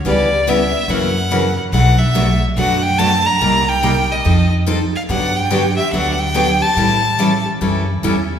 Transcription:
X:1
M:4/4
L:1/8
Q:"Swing" 1/4=143
K:Glyd
V:1 name="Violin"
d2 e2 f3 z | f e2 z f g a _b- | _b g2 _e2 z2 =f | f g2 e f g2 a- |
a3 z4 z |]
V:2 name="Steel-string acoustic guitar"
[C,G,B,EB] z [C,G,B,EB] z [F,CE^A] z [F,CEA] z | [B,,F,A,DFB] z [B,,F,A,DFB] z [B,,F,A,DFB] z [B,,F,A,DFB] z | [=C,G,_B,_EG] z [C,G,B,EG] z [=F,=CEA] z [F,CEA] z | [D,F,B,DG] z [D,F,B,DG] z [D,F,B,DG] z [D,F,B,DG] z |
[E,G,CEA] z [E,G,CEA] z [E,G,CEA] z [E,G,CEA] z |]
V:3 name="Steel-string acoustic guitar"
[C,E,B,CG] z [C,E,B,CG] z [C,E,^A,CF] z [C,E,A,CF] z | [B,,F,A,DF] z [B,,F,A,DF] z [B,,F,A,DF] z [B,,F,A,DF] z | [=C,G,_B,_EG] z [C,G,B,EG] z [=F,=CEA] z [F,CEA] z | [D,F,B,DG] z [D,F,B,DG] z [D,F,B,DG] z [D,F,B,DG] z |
[E,G,CEA] z [E,G,CEA] z [E,G,CEA] z [E,G,CEA] z |]
V:4 name="Upright bass" clef=bass
C,,4 F,,4 | B,,,4 F,,4 | =C,,4 =F,,4 | G,,4 D,,4 |
A,,4 F,,2 E,,2 |]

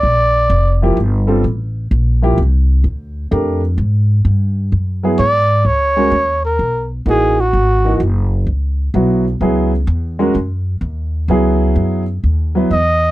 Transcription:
X:1
M:4/4
L:1/8
Q:"Swing" 1/4=128
K:Gdor
V:1 name="Trumpet"
d3 z4 z | z8 | z6 d2 | [K:C#dor] c3 A2 z G F- |
F2 z6 | z8 | z6 d2 |]
V:2 name="Upright piano"
z3 [F,B,EG] z [G,CFA] z2 | z [F,B,EG] z4 [A,DGB] z | z4 z [^F,=B,E^G] z2 | [K:C#dor] z [G,CFA] z4 [E,A,DF] z |
z [E,A,DF] z4 [F,B,EF] z | [F,B,EG] z2 [G,CFA] z4 | [F,B,EG]3 z2 [F,B,EB] z2 |]
V:3 name="Upright bass" clef=bass
B,,,2 F,,,2 G,,,2 A,,,2 | B,,,2 C,,2 D,,2 F,,2 | ^G,,2 =G,,2 ^F,,2 ^G,,2 | [K:C#dor] C,,2 D,,2 B,,,2 =A,,,2 |
G,,,2 F,,,2 C,,2 B,,,2 | C,,2 E,,2 F,,2 D,,2 | C,,2 F,,2 D,,2 E,,2 |]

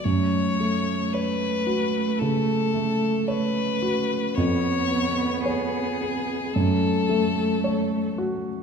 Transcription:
X:1
M:4/4
L:1/8
Q:1/4=56
K:F#phr
V:1 name="Violin"
c2 B2 A2 B2 | c2 ^G2 A3 z |]
V:2 name="Grand piano"
F,, A, c F C, A, c F | ^E,, B, c ^G F,, A, c F |]
V:3 name="Cello"
A,8 | B,4 A,4 |]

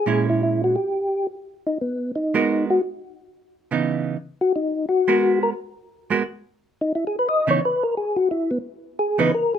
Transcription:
X:1
M:4/4
L:1/8
Q:"Swing" 1/4=175
K:G#m
V:1 name="Tonewheel organ"
G E E F =G3 z | z D B,2 D3 F | z8 | z F D2 F3 A |
z6 z D | (3E G B d c B A G F | E B, z2 G B A G |]
V:2 name="Hollow-body jazz guitar"
[A,,G,CE]4 z4 | z4 z [G,B,FA]3 | z4 z [C,E,B,D]3 | z4 z [G,B,FA]3 |
z3 [G,B,FA] z4 | z3 [C,E,B,D] z4 | z4 z [C,E,B,D] z2 |]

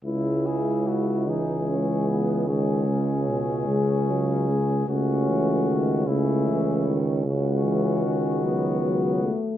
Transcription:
X:1
M:12/8
L:1/8
Q:3/8=50
K:C#m
V:1 name="Flugelhorn"
E G F G3 G6 | F3 E2 z F6 |]
V:2 name="French horn section"
E3 D C B, C6 | C3 C3 C3 B,3 |]
V:3 name="Euphonium" clef=bass
G,6 G,3 G, F, G, | A,3 A,2 z G,3 F, F, A, |]
V:4 name="Trombone" clef=bass
C,3 E,3 D, C, B,, C,3 | C, E, D, C, E, D, C, E, D,3 z |]
V:5 name="Tuba" clef=bass
C,,12 | C,,8- C,,3 z |]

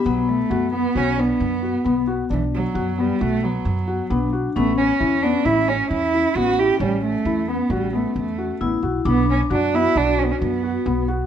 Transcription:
X:1
M:5/4
L:1/16
Q:1/4=133
K:Bm
V:1 name="Felt piano"
B,4 F2 B,2 F2 D4 F2 B,2 F2 | D4 F2 B,2 F2 B,4 F2 B,2 F2 | B,4 E2 B,2 E2 C4 E2 B,2 E2 | C4 E2 B,2 F2 B,4 F2 B,2 F2 |
B,4 F2 B,2 F2 D4 F2 B,2 F2 |]
V:2 name="Vibraphone"
B,16- B,4- | B,16 D4 | C16- C4- | C16 E4 |
D4 F16 |]
V:3 name="Cello"
F,2 A,4 B,2 C2 B,8 z2 | E,2 F,4 G,2 A,2 F,8 z2 | A,2 C4 D2 E2 C2 E4 F2 G2 | G,2 A,4 B,2 G,2 A,2 A,4 z4 |
B,2 C2 D2 E2 D2 C/2 B,/2 C B,6 z2 |]
V:4 name="Upright bass" clef=bass
B,,,4 F,,4 B,,,4 F,,4 B,,,4 | B,,,4 F,,4 B,,,4 F,,4 B,,,4 | A,,,4 E,,4 A,,,4 E,,4 A,,,4 | A,,,4 E,,4 A,,,4 E,,4 A,,,2 B,,,2 |
B,,,4 F,,4 B,,,4 F,,4 B,,,4 |]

